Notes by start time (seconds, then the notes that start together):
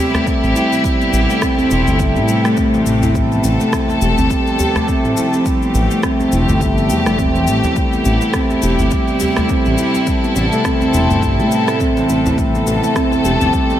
Already playing: C3 G3 A3 E4 G4
0.14 A3, cross-stick, djembe slap, djembe bass, shaker
0.27 C4, kick, shaker
0.43 A1 C4, shaker
0.56 E4, djembe slap, shaker
0.72 C4, djembe tone, shaker
0.84 G3, kick, shaker
1.01 B3, shaker
1.13 A1 G3, shaker
1.30 A3, shaker
1.42 C4, kick, cross-stick, shaker
1.58 C4, djembe tone, shaker
1.71 E1 E4, shaker
1.87 G1 A3, djembe bass, shaker
1.99 G3, kick, shaker
2.16 A2 B3, djembe slap, shaker
2.28 G3, shaker
2.45 A3, cross-stick, shaker
2.57 C4, kick, shaker
2.74 E3, djembe slap, shaker
2.86 A1 C4, shaker
3.02 E4, djembe slap, djembe bass, shaker
3.15 F3 A3 A4, kick, shaker
3.32 B3, djembe tone, shaker
3.44 A1 E4, shaker
3.61 A3, djembe slap, shaker
3.73 C4, kick, cross-stick, shaker
3.88 C4, djembe tone, shaker
4.02 E1 G4, shaker
4.18 G1 C4, djembe bass, shaker
4.30 G3, kick, shaker
4.47 B3, djembe slap, shaker
4.59 G4, djembe tone, djembe bass, shaker
4.76 A3, cross-stick, djembe slap, djembe bass, shaker
4.88 C4, kick, shaker
5.04 A1 C4, shaker
5.17 E4, djembe slap, shaker
5.33 C4, djembe tone, shaker
5.46 G3 G4, kick, shaker
5.62 B3, shaker
5.74 A1 G3, shaker
5.91 A3, shaker
6.03 C4, kick, cross-stick, shaker
6.20 C4, djembe tone, shaker
6.32 E1 E4, shaker
6.49 G1 A3, djembe bass, shaker
6.61 G3, kick, shaker
6.78 B3, djembe slap, shaker
6.90 E2 G3, shaker
7.06 E1 A3, cross-stick, shaker
7.19 C4, kick, shaker
7.35 E3, djembe slap, shaker
7.47 A1 C4, shaker
7.64 E4, djembe slap, djembe tone, djembe bass, shaker
7.76 C3 G3 A3 E4, kick, shaker
7.93 B3, djembe tone, shaker
8.05 A1 E4, shaker
8.21 A3, djembe slap, shaker
8.34 C4, kick, cross-stick, shaker
8.50 C4, djembe tone, shaker
8.62 E1 G4, shaker
8.79 G1 C4, djembe bass, shaker
8.91 G3, kick, shaker
9.08 B3, djembe slap, shaker
9.20 G4, djembe tone, djembe bass, shaker
9.37 A3, cross-stick, djembe slap, djembe bass, shaker
9.49 C4, kick, shaker
9.65 A1 C4, shaker
9.78 E4, djembe slap, shaker
9.95 C4, djembe tone, shaker
10.07 G3 A4, kick, shaker
10.24 B3, shaker
10.36 A1 G3, shaker
10.52 A3, shaker
10.65 C4, kick, cross-stick, shaker
10.81 C4, djembe tone, shaker
10.94 E1 E4, shaker
11.10 G1 A3, djembe bass, shaker
11.23 G3, kick, shaker
11.39 A2 B3, djembe slap, shaker
11.52 G3, shaker
11.68 A3, cross-stick, shaker
11.80 C4, kick, shaker
11.97 E3, djembe slap, shaker
12.09 A1 C4, shaker
12.26 E4, djembe slap, djembe bass, shaker
12.38 F3 A3 A4, kick, shaker
12.55 B3, djembe tone, shaker
12.67 A1 E4, shaker
12.83 A3, djembe slap, shaker
12.96 C4, kick, cross-stick, shaker
13.12 C4, djembe tone, shaker
13.24 E1 G4, shaker
13.41 G1 C4, djembe bass, shaker
13.53 G3, kick, shaker
13.70 B3, djembe slap, shaker